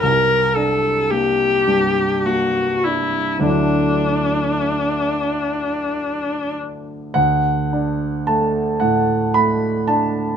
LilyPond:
<<
  \new Staff \with { instrumentName = "Viola" } { \time 3/4 \key d \major \tempo 4 = 52 bes'8 a'8 g'4 fis'8 e'8 | d'2~ d'8 r8 | r2. | }
  \new Staff \with { instrumentName = "Grand piano" } { \time 3/4 \key d \major r2. | r2. | fis''4 a''8 fis''8 b''8 a''8 | }
  \new Staff \with { instrumentName = "Grand piano" } { \time 3/4 \key d \major c,8 d'8 bes8 g,8 bes8 d'8 | <d, fis a d' e'>2. | d,8 d'8 a8 a,8 a8 d'8 | }
>>